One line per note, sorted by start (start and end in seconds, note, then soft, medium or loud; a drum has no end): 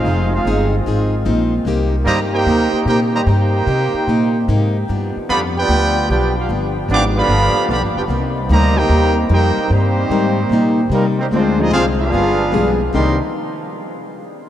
0.00 4.83 D#3 medium
0.00 0.31 G#3 medium
0.00 1.62 G#3 medium
0.00 0.32 C4 medium
0.00 4.83 C4 medium
0.00 0.33 D#4 medium
0.00 0.31 F4 medium
0.00 1.62 F4 medium
0.00 0.33 G#4 medium
0.00 0.33 C5 medium
0.00 0.33 F5 medium
0.05 0.44 F1 loud
0.05 0.33 F3 medium
0.05 0.34 C4 medium
0.05 0.34 D#4 medium
0.05 0.35 G#4 medium
0.33 0.70 G#3 medium
0.33 0.70 C4 medium
0.33 0.71 D#4 medium
0.33 0.70 F4 medium
0.33 0.71 G#4 medium
0.33 0.71 C5 medium
0.33 0.71 F5 medium
0.45 0.84 G1 loud
0.45 0.74 F3 medium
0.45 0.74 C4 medium
0.45 0.75 D#4 medium
0.45 0.75 G#4 medium
0.86 1.25 G#1 medium
0.86 1.14 F3 medium
0.86 1.14 C4 medium
0.86 1.15 D#4 medium
0.86 1.15 G#4 medium
1.25 1.64 A#1 loud
1.25 1.54 F3 medium
1.25 1.54 C4 medium
1.25 1.54 D#4 medium
1.25 1.54 G#4 medium
1.65 2.04 C2 loud
1.65 1.94 C3 medium
1.65 1.95 A#3 medium
1.65 4.85 A#3 medium
1.65 1.95 D#4 medium
1.65 11.28 G4 medium
1.65 1.95 G4 medium
2.05 2.45 G2 loud
2.05 2.35 C3 medium
2.05 2.17 D#3 loud
2.05 2.17 G3 loud
2.05 2.17 A#3 loud
2.05 2.35 A#3 medium
2.05 2.35 D#4 medium
2.05 2.19 G4 loud
2.05 2.35 G4 medium
2.05 2.19 C5 medium
2.05 2.19 D#5 loud
2.05 2.19 A#5 loud
2.33 2.82 A#3 loud
2.33 2.83 D#4 medium
2.33 2.83 G4 loud
2.33 2.83 A#4 loud
2.33 2.83 C5 medium
2.33 2.83 G5 loud
2.46 2.71 D#2 loud
2.46 2.75 C3 medium
2.46 2.75 A#3 medium
2.46 2.76 D#4 medium
2.46 2.76 G4 medium
2.73 muted upright bass stroke soft
2.85 3.25 A#2 medium
2.85 3.15 C3 medium
2.85 2.98 A#3 medium
2.85 3.15 A#3 medium
2.85 2.98 D#4 medium
2.85 3.15 D#4 medium
2.85 3.00 D#4 medium
2.85 2.99 G4 medium
2.85 3.15 G4 medium
2.85 3.00 A#4 medium
2.85 3.00 C5 medium
2.85 3.00 G5 medium
3.13 3.19 D#3 medium
3.13 3.20 G3 medium
3.13 3.20 A#3 medium
3.13 3.21 G4 medium
3.13 3.21 C5 medium
3.13 3.21 D#5 medium
3.13 3.21 A#5 medium
3.26 3.65 G2 loud
3.26 3.55 C3 medium
3.26 3.55 A#3 medium
3.26 4.44 A#3 medium
3.26 4.44 D#4 medium
3.26 3.56 D#4 medium
3.26 4.44 G4 medium
3.26 3.56 G4 medium
3.26 4.43 A#4 medium
3.26 4.44 C5 medium
3.26 4.44 G5 loud
3.67 3.92 C3 loud
3.67 3.95 C3 medium
3.67 3.95 A#3 medium
3.67 3.96 D#4 medium
3.67 3.96 G4 medium
3.94 muted upright bass stroke soft
4.07 4.46 A#2 loud
4.07 4.36 C3 medium
4.07 4.36 A#3 medium
4.07 4.36 D#4 medium
4.07 4.37 G4 medium
4.48 4.87 G#2 loud
4.48 4.76 C3 medium
4.48 4.76 A#3 medium
4.48 4.77 D#4 medium
4.48 4.77 G4 medium
4.88 5.16 G2 medium
4.88 5.13 G2 medium
4.88 8.07 F3 medium
4.88 5.16 F3 medium
4.88 8.07 B3 medium
4.88 5.17 B3 medium
4.88 8.07 D4 medium
4.88 5.17 D4 medium
5.17 muted upright bass stroke soft
5.29 5.67 F2 loud
5.29 5.57 G2 medium
5.29 5.42 D3 loud
5.29 5.57 F3 medium
5.29 5.42 F3 loud
5.29 5.41 B3 medium
5.29 5.57 B3 medium
5.29 5.57 D4 medium
5.29 5.42 G4 medium
5.29 5.42 D5 medium
5.29 5.42 F5 medium
5.29 5.42 B5 loud
5.57 6.06 B3 medium
5.57 6.06 D4 medium
5.57 6.06 F4 loud
5.57 6.06 G4 medium
5.57 6.06 B4 medium
5.57 6.07 D5 medium
5.57 6.07 G5 loud
5.69 6.07 D2 medium
5.69 5.97 G2 medium
5.69 5.97 F3 medium
5.69 5.97 B3 medium
5.69 5.98 D4 medium
6.09 6.48 B1 medium
6.09 6.37 G2 medium
6.09 6.38 F3 medium
6.09 6.34 B3 medium
6.09 6.38 B3 medium
6.09 6.34 D4 medium
6.09 6.38 D4 medium
6.09 6.35 F4 medium
6.09 6.34 G4 medium
6.09 6.34 B4 medium
6.09 6.35 D5 medium
6.09 6.35 G5 medium
6.37 6.48 B3 medium
6.37 6.49 D4 medium
6.37 6.50 D4 medium
6.37 6.49 F4 medium
6.37 6.50 G4 medium
6.37 6.50 B4 medium
6.37 6.50 F5 medium
6.49 6.88 G1 loud
6.49 6.77 G2 soft
6.49 6.77 F3 medium
6.49 6.78 B3 medium
6.49 6.78 D4 medium
6.88 7.27 G#1 loud
6.88 7.17 G2 medium
6.88 7.17 F3 medium
6.88 7.04 F3 medium
6.88 7.18 B3 medium
6.88 7.03 B3 loud
6.88 7.18 D4 medium
6.88 7.03 D4 loud
6.93 7.04 B4 medium
6.93 7.05 F5 medium
6.93 7.04 G5 medium
6.93 7.05 D6 loud
7.16 7.66 D3 loud
7.16 7.66 F3 loud
7.16 7.66 B3 loud
7.16 7.67 G4 medium
7.16 7.67 D5 loud
7.16 7.66 F5 loud
7.16 7.67 B5 loud
7.28 7.54 G1 loud
7.28 7.57 G2 medium
7.28 7.58 F3 medium
7.28 7.58 B3 medium
7.28 7.58 D4 medium
7.55 muted upright bass stroke soft
7.68 7.82 B1 medium
7.68 7.98 G2 medium
7.68 7.80 D3 medium
7.68 7.80 F3 medium
7.68 7.98 F3 medium
7.68 7.81 B3 medium
7.68 7.98 B3 medium
7.68 7.98 D4 medium
7.68 7.82 G4 medium
7.68 7.82 D5 medium
7.68 7.83 F5 medium
7.68 7.83 B5 medium
7.82 7.95 G1 medium
7.95 8.07 F1 medium
7.95 8.03 B3 medium
7.95 8.02 D4 medium
7.95 8.04 F4 medium
7.95 8.03 G4 medium
7.95 8.03 B4 medium
7.95 8.03 D5 medium
7.95 8.03 G5 medium
8.08 8.48 C2 medium
8.08 8.37 C3 medium
8.08 8.38 G3 medium
8.08 11.28 A#3 medium
8.08 8.38 A#3 medium
8.08 11.28 C4 medium
8.08 11.28 D#4 medium
8.08 8.38 D#4 medium
8.49 8.88 D2 loud
8.49 8.78 C3 medium
8.49 8.76 D#3 loud
8.49 8.78 G3 medium
8.49 8.76 G3 loud
8.49 8.78 A#3 medium
8.49 8.76 A#3 loud
8.49 8.79 D#4 medium
8.49 8.76 G4 loud
8.49 8.76 C5 medium
8.49 8.77 D#5 loud
8.49 8.76 A#5 loud
8.78 9.17 A#3 loud
8.78 9.17 D#4 loud
8.78 9.18 D#4 loud
8.78 9.17 G4 loud
8.78 9.18 A#4 loud
8.78 9.18 C5 loud
8.78 9.18 G5 loud
8.89 9.28 D#2 loud
8.89 9.18 C3 medium
8.89 9.19 G3 medium
8.89 9.19 A#3 medium
8.89 9.19 D#4 medium
9.29 9.55 F2 medium
9.29 9.58 C3 medium
9.29 9.58 G3 medium
9.29 9.58 A#3 medium
9.29 9.68 A#3 medium
9.29 9.58 D#4 medium
9.29 9.68 D#4 loud
9.29 9.69 D#4 medium
9.29 9.68 G4 medium
9.29 9.69 A#4 medium
9.29 9.69 G5 loud
9.34 9.69 C5 medium
9.57 muted upright bass stroke soft
9.69 10.09 G2 loud
9.69 9.99 C3 medium
9.69 10.87 D#3 medium
9.69 10.87 G3 medium
9.69 9.99 G3 medium
9.69 9.99 A#3 medium
9.69 10.88 A#3 medium
9.69 10.86 C4 medium
9.69 10.00 D#4 medium
9.69 10.88 D#4 medium
9.69 10.88 G4 medium
9.73 10.89 C5 medium
10.10 10.49 G#2 loud
10.10 10.39 C3 medium
10.10 10.39 G3 medium
10.10 10.39 A#3 medium
10.10 10.40 D#4 medium
10.49 10.89 A#2 loud
10.49 10.79 C3 medium
10.49 10.80 G3 medium
10.49 10.80 A#3 medium
10.49 10.80 D#4 medium
10.90 11.29 C3 medium
10.90 11.20 C3 medium
10.90 11.04 D#3 medium
10.90 11.04 G3 medium
10.90 11.20 G3 medium
10.90 11.04 A#3 medium
10.90 11.20 A#3 medium
10.90 11.20 D#4 medium
10.94 11.06 G3 medium
10.94 11.06 C4 medium
10.94 11.06 D#4 medium
10.94 11.06 A#4 medium
11.19 11.26 D#3 medium
11.19 11.25 G3 medium
11.19 11.26 A#3 medium
11.19 11.25 C4 medium
11.19 11.27 D#4 medium
11.19 11.27 G4 medium
11.19 11.27 C5 medium
11.31 11.70 D2 loud
11.31 11.60 D3 soft
11.31 11.57 F3 medium
11.31 11.60 G#3 medium
11.31 11.57 G#3 medium
11.31 11.58 G#3 medium
11.31 11.57 C4 medium
11.31 11.61 C4 medium
11.31 11.58 D4 medium
11.31 11.58 F4 medium
11.31 11.61 F4 medium
11.31 11.58 C5 loud
11.58 11.70 F3 medium
11.58 11.70 G#3 medium
11.58 11.71 C4 medium
11.58 11.73 C4 medium
11.58 11.71 D4 medium
11.58 11.73 D#4 medium
11.58 11.73 F4 medium
11.58 11.71 G#4 medium
11.58 11.73 G#4 medium
11.58 11.73 D#5 loud
11.71 12.10 C2 loud
11.71 12.00 D3 medium
11.71 12.00 G#3 medium
11.71 11.85 G#3 medium
11.71 12.01 C4 medium
11.71 11.86 C4 medium
11.71 11.86 D4 medium
11.71 11.85 F4 medium
11.71 12.01 F4 medium
11.71 11.85 G#4 medium
11.71 11.85 C5 medium
11.71 11.85 F5 loud
12.00 12.76 B3 medium
12.00 12.76 D4 medium
12.00 12.76 F4 loud
12.00 12.77 G#4 medium
12.00 12.77 B4 medium
12.00 12.76 F5 loud
12.12 12.51 G1 loud
12.12 12.41 G3 medium
12.12 12.41 B3 medium
12.12 12.41 F4 medium
12.12 12.41 G#4 medium
12.52 12.92 B1 loud
12.52 12.77 F3 medium
12.52 12.80 G3 medium
12.52 12.77 G#3 medium
12.52 12.81 B3 medium
12.52 12.77 B3 medium
12.52 12.77 D4 medium
12.52 12.81 F4 medium
12.52 12.81 G#4 medium
12.52 12.78 G#4 medium
12.93 13.18 C2 loud
12.93 13.14 C3 medium
12.93 13.19 C3 medium
12.93 13.17 D#3 medium
12.93 13.19 G3 loud
12.93 13.17 A#3 medium
12.93 13.15 A#3 medium
12.93 13.19 A#3 medium
12.93 13.17 C4 medium
12.93 13.18 D4 medium
12.93 13.15 D#4 medium
12.93 13.19 D#4 loud
12.93 13.18 G4 medium
12.93 13.15 G4 medium
12.93 13.19 A#4 medium
12.93 13.19 D#5 medium
12.93 13.19 G5 medium
12.93 13.19 C6 medium